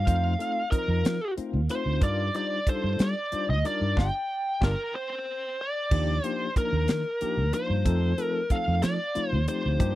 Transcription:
0.00 0.68 F5 medium
0.06 0.34 F2 medium
0.06 0.33 A3 medium
0.06 0.33 C4 medium
0.06 0.33 D#4 medium
0.06 0.33 F4 medium
0.06 0.33 C5 medium
0.06 kick medium
0.06 closed hi-hat medium
0.39 0.62 A3 medium
0.39 0.62 C4 medium
0.39 0.62 D#4 medium
0.39 0.62 F4 medium
0.39 0.62 A4 medium
0.39 closed hi-hat medium
0.71 1.17 F3 medium
0.71 1.17 C4 medium
0.71 1.17 D#4 soft
0.71 1.17 F4 soft
0.71 1.33 A#4 medium
0.71 1.17 D#5 medium
0.71 kick medium
0.71 closed hi-hat medium
0.88 1.01 F2 medium
1.05 1.18 F3 medium
1.05 snare loud
1.05 closed hi-hat medium
1.37 1.60 A3 medium
1.37 1.59 C4 medium
1.37 1.60 D#4 medium
1.37 1.59 F4 medium
1.37 1.60 C5 medium
1.37 muted fretless electric bass stroke soft
1.37 closed hi-hat medium
1.53 1.67 D#2 medium
1.69 2.02 A3 medium
1.69 2.02 C4 medium
1.69 2.00 D#4 medium
1.69 2.00 F4 medium
1.69 2.02 C5 medium
1.69 2.04 C5 medium
1.69 closed hi-hat medium
1.86 1.99 D2 medium
2.01 2.28 G2 medium
2.01 2.27 G3 medium
2.01 2.27 D4 medium
2.01 2.28 D#4 medium
2.01 2.28 F4 medium
2.01 2.28 A#4 medium
2.01 2.35 D5 medium
2.01 kick medium
2.01 closed hi-hat medium
2.34 2.57 G3 medium
2.34 2.57 D4 medium
2.34 2.57 D#4 medium
2.34 2.57 F4 medium
2.34 2.57 C5 medium
2.34 2.69 D5 medium
2.34 closed hi-hat medium
2.67 3.12 G3 medium
2.67 3.12 D4 medium
2.67 3.12 D#4 medium
2.67 3.12 F4 medium
2.67 3.12 A4 medium
2.67 3.02 C5 medium
2.67 kick medium
2.67 closed hi-hat medium
2.84 2.97 G2 medium
2.99 3.13 G3 medium
2.99 3.46 D5 medium
2.99 snare medium
2.99 closed hi-hat medium
3.32 3.54 G3 medium
3.32 3.54 D4 medium
3.32 3.54 D#4 medium
3.32 3.55 F4 medium
3.32 3.55 C5 medium
3.32 muted fretless electric bass stroke soft
3.32 closed hi-hat medium
3.49 3.62 D2 medium
3.49 3.64 D#5 medium
3.65 3.97 G3 medium
3.65 3.95 D4 medium
3.65 3.97 D#4 medium
3.65 3.96 F4 medium
3.65 3.97 A#4 medium
3.65 3.99 D5 medium
3.65 closed hi-hat medium
3.81 3.94 G2 medium
3.96 4.09 G1 medium
3.96 4.07 D4 medium
3.96 4.07 F4 medium
3.96 4.07 G4 medium
3.96 5.56 G5 medium
3.96 kick medium
3.96 snare medium
4.61 4.74 G1 medium
4.61 4.72 D4 medium
4.61 4.72 F4 medium
4.61 4.72 G4 medium
4.61 4.93 A#4 medium
4.61 kick medium
4.61 snare medium
4.96 5.62 C5 medium
5.61 6.26 D5 medium
5.91 6.18 D#2 medium
5.91 6.18 F3 medium
5.91 6.17 A#3 medium
5.91 6.18 D4 medium
5.91 6.18 D#4 medium
5.91 6.18 G4 medium
5.91 kick medium
5.91 crash medium
6.24 6.46 F3 medium
6.24 6.46 A#3 medium
6.24 6.47 D4 medium
6.24 6.46 D#4 medium
6.24 6.46 G4 medium
6.24 6.53 C5 medium
6.24 closed hi-hat medium
6.56 7.01 F3 medium
6.56 7.01 A#3 medium
6.56 7.02 D4 medium
6.56 7.01 D#4 medium
6.56 7.02 A#4 medium
6.56 7.54 A#4 medium
6.56 kick medium
6.56 closed hi-hat medium
6.72 6.86 D#2 medium
6.88 7.03 D#3 medium
6.88 snare loud
6.88 closed hi-hat medium
7.21 7.44 F3 medium
7.21 7.44 A#3 medium
7.21 7.44 D4 medium
7.21 7.44 D#4 soft
7.21 7.44 G4 medium
7.21 muted fretless electric bass stroke soft
7.21 closed hi-hat medium
7.37 7.51 D2 medium
7.53 7.84 F3 medium
7.53 7.86 A#3 medium
7.53 7.86 D4 medium
7.53 7.84 D#4 medium
7.53 7.86 F4 medium
7.53 8.25 C5 medium
7.53 closed hi-hat medium
7.70 7.83 G2 medium
7.85 8.12 F2 medium
7.85 8.11 F3 medium
7.85 8.12 A3 medium
7.85 8.12 C4 medium
7.85 8.12 D#4 medium
7.85 8.12 A4 medium
7.85 kick loud
7.85 closed hi-hat medium
8.18 8.40 F3 medium
8.18 8.41 A3 medium
8.18 8.41 C4 medium
8.18 8.41 D#4 medium
8.18 8.41 A4 medium
8.18 closed hi-hat medium
8.25 8.54 A#4 medium
8.50 8.95 F3 medium
8.50 8.95 A3 medium
8.50 8.95 C4 medium
8.50 8.95 D#4 medium
8.50 8.95 A4 medium
8.50 8.83 F5 medium
8.50 kick medium
8.50 closed hi-hat medium
8.68 8.81 F2 medium
8.82 8.97 F3 medium
8.82 9.29 D5 medium
8.82 snare medium
8.82 closed hi-hat medium
9.15 9.38 F3 medium
9.15 9.38 A3 medium
9.15 9.38 C4 soft
9.15 9.38 D#4 medium
9.15 9.38 F4 medium
9.15 muted fretless electric bass stroke soft
9.15 closed hi-hat medium
9.29 9.46 D#2 medium
9.29 9.44 C5 medium
9.48 9.78 F3 medium
9.48 9.80 A3 medium
9.48 9.81 C4 medium
9.48 9.78 D#4 medium
9.48 9.78 G4 medium
9.48 9.95 C5 medium
9.48 closed hi-hat medium
9.66 9.78 D2 medium
9.79 9.95 G2 medium
9.79 9.95 F3 medium
9.79 9.95 A#3 medium
9.79 9.95 D4 medium
9.79 9.95 D#4 medium
9.79 9.95 G4 medium
9.79 kick loud
9.79 closed hi-hat medium

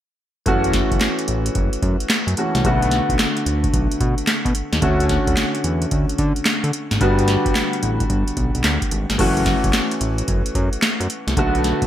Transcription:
0.46 0.83 F#1 medium
0.46 2.33 E3 medium
0.46 2.33 A3 medium
0.46 2.34 C#4 medium
0.46 2.34 F#4 medium
0.46 kick medium
0.46 closed hi-hat medium
0.64 closed hi-hat soft
0.73 kick medium
0.73 snare medium
0.73 closed hi-hat medium
0.91 0.99 F#1 medium
0.91 kick medium
0.91 closed hi-hat medium
1.01 snare loud
1.01 clap medium
1.01 closed hi-hat medium
1.19 closed hi-hat medium
1.28 1.50 A1 medium
1.28 closed hi-hat medium
1.46 closed hi-hat medium
1.55 1.70 F#1 loud
1.55 kick medium
1.55 closed hi-hat medium
1.73 closed hi-hat medium
1.82 1.97 F#2 loud
1.82 kick medium
1.82 closed hi-hat medium
2.00 closed hi-hat medium
2.10 snare loud
2.10 clap loud
2.10 closed hi-hat medium
2.27 2.35 F#2 loud
2.27 closed hi-hat medium
2.37 2.64 E3 medium
2.37 2.63 A3 soft
2.37 2.65 C#4 medium
2.37 2.65 F#4 medium
2.37 closed hi-hat medium
2.55 2.63 C2 loud
2.55 snare medium
2.55 closed hi-hat medium
2.64 3.01 B1 loud
2.64 2.73 C#3 medium
2.64 4.79 A3 medium
2.64 4.79 B3 medium
2.64 4.79 F#4 medium
2.64 kick medium
2.64 closed hi-hat medium
2.70 4.80 D3 medium
2.82 closed hi-hat soft
2.91 snare medium
2.91 closed hi-hat medium
3.09 3.17 B1 medium
3.09 kick medium
3.09 closed hi-hat medium
3.19 snare loud
3.19 clap medium
3.19 closed hi-hat medium
3.37 closed hi-hat medium
3.46 3.68 D2 medium
3.46 closed hi-hat medium
3.64 kick medium
3.64 closed hi-hat medium
3.74 3.88 B1 loud
3.74 kick medium
3.74 closed hi-hat medium
3.91 closed hi-hat medium
4.00 4.15 B2 loud
4.00 kick medium
4.00 closed hi-hat medium
4.18 closed hi-hat medium
4.27 snare loud
4.27 clap loud
4.27 closed hi-hat medium
4.45 4.53 B2 loud
4.45 kick medium
4.45 closed hi-hat medium
4.55 closed hi-hat medium
4.72 4.80 D#2 loud
4.72 snare medium
4.72 closed hi-hat medium
4.81 5.19 D2 loud
4.81 6.96 D3 medium
4.81 6.96 A3 medium
4.81 6.97 C#4 medium
4.81 6.97 F#4 medium
4.81 kick medium
4.81 closed hi-hat medium
5.00 closed hi-hat medium
5.09 kick medium
5.09 snare medium
5.09 closed hi-hat medium
5.27 5.35 D2 medium
5.27 kick medium
5.27 closed hi-hat medium
5.37 snare loud
5.37 clap medium
5.37 closed hi-hat medium
5.55 closed hi-hat medium
5.64 5.86 E2 medium
5.64 closed hi-hat medium
5.82 closed hi-hat medium
5.91 6.06 D2 loud
5.91 kick loud
5.91 closed hi-hat medium
6.09 closed hi-hat medium
6.18 6.33 D3 loud
6.18 kick medium
6.18 closed hi-hat medium
6.36 closed hi-hat soft
6.46 snare loud
6.46 clap loud
6.46 closed hi-hat medium
6.64 6.71 D3 loud
6.64 closed hi-hat medium
6.73 closed hi-hat medium
6.91 6.99 G#1 medium
6.91 snare medium
6.91 closed hi-hat medium
7.00 7.37 G1 loud
7.00 9.14 D3 medium
7.00 9.15 G3 medium
7.00 9.15 B3 medium
7.00 9.16 F#4 medium
7.00 kick medium
7.00 closed hi-hat medium
7.19 closed hi-hat soft
7.28 snare medium
7.28 closed hi-hat medium
7.46 7.53 G1 medium
7.46 kick medium
7.46 closed hi-hat medium
7.55 snare loud
7.55 clap loud
7.55 closed hi-hat medium
7.73 closed hi-hat medium
7.83 8.05 A1 loud
7.83 closed hi-hat medium
8.00 kick medium
8.00 closed hi-hat medium
8.10 8.24 G1 medium
8.10 kick loud
8.10 closed hi-hat medium
8.28 closed hi-hat medium
8.37 8.51 B1 medium
8.37 kick medium
8.37 closed hi-hat medium
8.55 8.63 B1 medium
8.55 closed hi-hat medium
8.64 8.79 D2 loud
8.64 snare loud
8.64 clap loud
8.64 closed hi-hat medium
8.82 kick medium
8.82 closed hi-hat medium
8.91 9.06 G#1 medium
8.91 closed hi-hat medium
9.10 9.17 G1 medium
9.10 snare medium
9.10 closed hi-hat medium
9.18 9.55 F#1 loud
9.18 11.33 E3 medium
9.18 11.33 A3 medium
9.18 11.33 C#4 medium
9.18 11.34 F#4 medium
9.18 kick medium
9.18 closed hi-hat medium
9.18 crash medium
9.37 closed hi-hat soft
9.46 kick medium
9.46 snare medium
9.46 closed hi-hat medium
9.64 9.72 F#1 medium
9.64 kick medium
9.64 closed hi-hat medium
9.73 snare loud
9.73 clap medium
9.73 closed hi-hat medium
9.91 closed hi-hat medium
10.01 10.23 A1 medium
10.01 closed hi-hat medium
10.18 closed hi-hat medium
10.28 10.43 F#1 loud
10.28 kick medium
10.28 closed hi-hat medium
10.46 closed hi-hat medium
10.55 10.70 F#2 loud
10.55 kick medium
10.55 closed hi-hat medium
10.73 closed hi-hat medium
10.82 snare loud
10.82 clap loud
10.82 closed hi-hat medium
11.00 11.08 F#2 loud
11.00 closed hi-hat medium
11.10 closed hi-hat medium
11.27 11.35 C2 loud
11.27 snare medium
11.27 closed hi-hat medium
11.37 11.73 B1 loud
11.37 11.87 D3 medium
11.37 11.87 A3 medium
11.37 11.87 B3 medium
11.37 11.87 F#4 medium
11.37 kick loud
11.37 closed hi-hat medium
11.55 closed hi-hat medium
11.64 snare medium
11.64 closed hi-hat medium
11.82 11.87 B1 medium
11.82 kick medium
11.82 closed hi-hat medium

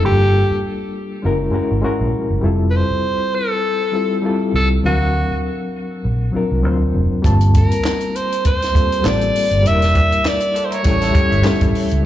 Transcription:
0.02 0.43 G1 medium
0.02 1.10 G3 medium
0.02 1.10 A#3 medium
0.02 1.11 D4 medium
0.02 1.11 F4 medium
0.02 0.61 G4 loud
0.06 1.12 A4 medium
0.51 muted fingered electric bass stroke soft
1.22 1.50 F#1 medium
1.22 1.50 G#3 medium
1.22 1.50 C#4 medium
1.22 1.51 E4 medium
1.22 1.51 F#4 medium
1.22 1.52 A#4 loud
1.51 1.79 G#3 medium
1.51 1.80 C#4 medium
1.51 1.81 E4 medium
1.51 1.81 F#4 medium
1.51 muted fingered electric bass stroke soft
1.55 1.81 A#4 medium
1.71 1.82 G#1 medium
1.82 2.36 G#3 medium
1.82 2.37 C#4 medium
1.82 2.37 E4 medium
1.82 2.38 F#4 medium
1.82 2.38 A#4 medium
1.82 muted fingered electric bass stroke soft
2.01 2.12 A#1 medium
2.30 2.42 F#1 medium
2.42 2.82 F1 medium
2.42 3.50 G3 medium
2.42 3.50 C4 medium
2.42 3.51 E4 medium
2.42 3.51 F4 medium
2.46 3.52 A4 loud
2.70 2.78 B4 medium
2.76 3.36 C5 medium
2.91 muted fingered electric bass stroke soft
3.35 4.25 A4 medium
3.92 4.20 G3 medium
3.92 4.20 C4 medium
3.92 4.21 E4 medium
3.92 4.21 F4 medium
3.92 4.22 A4 medium
4.22 4.77 G3 medium
4.22 4.77 C4 medium
4.22 4.78 E4 medium
4.22 4.78 F4 medium
4.22 4.79 A4 medium
4.54 4.79 C2 medium
4.54 4.68 A4 medium
4.83 5.23 D2 medium
4.83 5.90 F#3 medium
4.83 5.91 C4 medium
4.83 5.91 D4 medium
4.83 5.41 F#4 loud
4.83 5.92 A#4 medium
4.83 5.92 F5 medium
5.31 muted fingered electric bass stroke soft
6.05 6.30 A#1 medium
6.32 6.60 F#3 medium
6.32 6.61 C4 medium
6.32 6.61 D4 medium
6.32 6.61 F4 medium
6.32 muted fingered electric bass stroke soft
6.36 6.62 A#4 medium
6.51 6.65 C2 medium
6.62 6.90 D2 medium
6.62 7.17 F#3 medium
6.62 7.17 C4 medium
6.62 7.18 D4 medium
6.62 7.18 F4 medium
6.66 7.19 C5 medium
6.94 7.08 F1 medium
7.22 7.63 G1 loud
7.22 8.30 G3 medium
7.22 8.30 A#3 medium
7.22 8.31 C4 medium
7.22 8.31 F4 medium
7.22 8.32 A5 medium
7.22 kick loud
7.22 closed hi-hat medium
7.41 closed hi-hat soft
7.54 8.17 A#4 medium
7.54 kick medium
7.54 closed hi-hat medium
7.71 muted fingered electric bass stroke soft
7.71 closed hi-hat medium
7.84 snare loud
7.84 clap medium
8.01 closed hi-hat medium
8.16 8.45 C5 medium
8.16 closed hi-hat medium
8.32 closed hi-hat medium
8.45 9.08 C5 medium
8.45 kick medium
8.45 closed hi-hat medium
8.62 snare soft
8.62 closed hi-hat soft
8.72 9.00 G3 medium
8.72 9.01 A#3 medium
8.72 9.01 C4 medium
8.72 9.01 F4 medium
8.72 9.02 A4 medium
8.72 kick loud
8.72 closed hi-hat medium
8.92 closed hi-hat soft
9.02 9.30 A1 medium
9.02 9.57 G3 medium
9.02 9.57 A#3 medium
9.02 9.58 C4 medium
9.02 9.58 F4 medium
9.02 9.58 A4 medium
9.02 snare loud
9.02 clap medium
9.07 9.69 D5 loud
9.21 closed hi-hat medium
9.36 open hi-hat medium
9.51 9.65 G1 medium
9.51 closed hi-hat soft
9.62 10.04 E1 loud
9.62 10.70 G3 medium
9.62 10.71 A#3 medium
9.62 10.71 D4 medium
9.62 10.72 E4 medium
9.62 closed hi-hat medium
9.67 10.72 A#4 medium
9.67 10.29 E5 loud
9.82 snare soft
9.82 closed hi-hat soft
9.95 kick medium
9.95 closed hi-hat medium
10.12 muted fingered electric bass stroke soft
10.12 closed hi-hat soft
10.25 10.66 D5 medium
10.25 snare loud
10.25 clap medium
10.40 closed hi-hat medium
10.54 10.70 A4 soft
10.54 10.70 D5 medium
10.54 closed hi-hat medium
10.65 10.75 C5 medium
10.70 10.84 E4 medium
10.70 10.84 A#4 medium
10.70 11.76 C#5 medium
10.70 closed hi-hat soft
10.83 11.10 A1 loud
10.83 11.11 G3 medium
10.83 11.11 A3 medium
10.83 11.12 C#4 medium
10.83 11.12 E4 medium
10.83 11.00 G4 medium
10.83 11.00 C#5 medium
10.83 kick medium
10.83 closed hi-hat medium
10.87 11.13 A4 medium
11.01 11.14 E4 medium
11.01 11.14 A4 medium
11.01 snare soft
11.01 closed hi-hat soft
11.12 11.40 G3 medium
11.12 11.41 A3 medium
11.12 11.41 C#4 medium
11.12 11.30 C#4 medium
11.12 11.42 E4 medium
11.12 11.30 G4 medium
11.12 kick medium
11.12 closed hi-hat medium
11.16 11.42 A4 medium
11.30 11.43 G1 medium
11.30 12.01 A3 medium
11.30 12.01 E4 medium
11.30 closed hi-hat soft
11.43 11.97 G3 medium
11.43 11.98 A3 medium
11.43 11.98 C#4 medium
11.43 11.99 E4 medium
11.43 11.99 A4 loud
11.43 snare loud
11.43 clap medium
11.61 11.73 A1 medium
11.61 kick medium
11.61 closed hi-hat soft
11.75 open hi-hat medium
11.91 12.03 C#2 medium
11.91 closed hi-hat soft

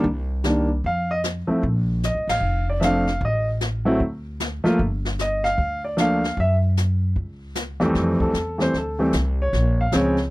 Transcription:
0.04 0.79 C2 loud
0.04 brush sweep soft
0.04 kick soft
0.44 0.67 D#3 medium
0.44 0.67 G3 medium
0.44 0.67 A#3 soft
0.44 0.68 D4 medium
0.44 snare medium
0.44 hi-hat pedal medium
0.84 1.45 F2 medium
0.84 1.10 F5 medium
0.84 brush sweep soft
0.84 kick soft
1.11 1.19 D#5 medium
1.24 snare medium
1.24 hi-hat pedal medium
1.47 1.61 F3 medium
1.47 1.61 A3 medium
1.47 1.61 C4 soft
1.47 1.61 E4 medium
1.47 muted upright bass stroke soft
1.63 2.12 A#1 medium
1.63 brush sweep soft
1.63 kick soft
2.03 2.28 D#5 medium
2.03 snare medium
2.03 hi-hat pedal medium
2.15 2.27 C2 medium
2.27 2.40 A1 medium
2.27 2.65 F5 medium
2.27 snare medium
2.27 ride medium
2.40 3.16 F1 medium
2.40 brush sweep soft
2.70 2.82 D5 medium
2.80 3.04 F3 medium
2.80 3.04 A3 medium
2.80 3.04 C4 medium
2.80 3.05 D4 medium
2.80 2.83 E5 medium
2.80 snare medium
2.80 hi-hat pedal medium
2.84 3.20 F5 loud
3.07 snare soft
3.21 3.96 A1 medium
3.21 brush sweep soft
3.21 kick soft
3.25 3.48 D#5 medium
3.61 snare medium
3.61 hi-hat pedal soft
3.85 3.98 F#3 medium
3.85 3.99 A3 medium
3.85 3.99 C4 medium
3.85 3.99 E4 medium
4.00 4.61 D2 medium
4.00 brush sweep soft
4.00 kick soft
4.40 snare medium
4.40 hi-hat pedal medium
4.64 4.77 F3 medium
4.64 4.77 A3 medium
4.64 4.78 A#3 medium
4.64 4.78 F4 medium
4.64 muted upright bass stroke soft
4.64 snare soft
4.79 5.54 G1 medium
4.79 brush sweep medium
4.79 kick soft
5.05 snare soft
5.19 5.44 D#5 medium
5.19 snare medium
5.19 hi-hat pedal medium
5.44 5.81 F5 loud
5.44 snare soft
5.58 6.33 D2 medium
5.58 brush sweep soft
5.58 kick soft
5.84 5.98 D5 medium
5.97 6.20 F3 medium
5.97 6.20 A3 medium
5.97 6.20 A#3 medium
5.97 6.20 D4 medium
5.97 6.36 F5 medium
5.97 snare medium
5.97 hi-hat pedal soft
6.24 snare soft
6.37 7.12 F#2 medium
6.37 6.54 E5 medium
6.37 brush sweep soft
6.37 kick soft
6.77 snare medium
6.77 hi-hat pedal medium
7.16 7.91 C#2 medium
7.16 brush sweep soft
7.16 kick soft
7.55 snare medium
7.55 hi-hat pedal medium
7.80 8.31 F2 medium
7.80 8.32 E3 medium
7.80 8.32 G3 medium
7.80 8.32 A3 medium
7.80 8.32 C4 medium
7.80 snare soft
7.95 8.19 F2 medium
7.95 brush sweep soft
7.95 kick soft
7.95 snare soft
8.20 8.57 A4 medium
8.20 muted upright bass stroke soft
8.20 kick soft
8.34 8.72 E2 medium
8.34 kick soft
8.34 snare medium
8.34 hi-hat pedal medium
8.58 8.72 E3 medium
8.58 8.72 G3 soft
8.58 8.72 A3 soft
8.58 8.73 C4 medium
8.58 snare soft
8.62 8.75 C5 medium
8.73 9.12 D2 medium
8.73 9.00 A4 medium
8.73 brush sweep soft
8.73 kick soft
8.73 snare soft
8.99 9.12 E3 medium
8.99 9.12 G3 medium
8.99 9.12 A3 medium
8.99 9.13 C4 medium
9.13 9.52 C2 medium
9.13 kick soft
9.13 snare medium
9.13 hi-hat pedal medium
9.42 9.77 C#5 medium
9.53 9.91 A#1 medium
9.53 brush sweep soft
9.53 kick soft
9.53 snare soft
9.81 9.93 F5 medium
9.92 10.30 C#2 medium
9.92 10.16 C#3 medium
9.92 10.16 F3 medium
9.92 10.16 G#3 medium
9.92 10.16 C4 medium
9.92 10.19 C#5 medium
9.92 kick soft
9.92 snare medium
9.92 hi-hat pedal medium
10.17 snare soft

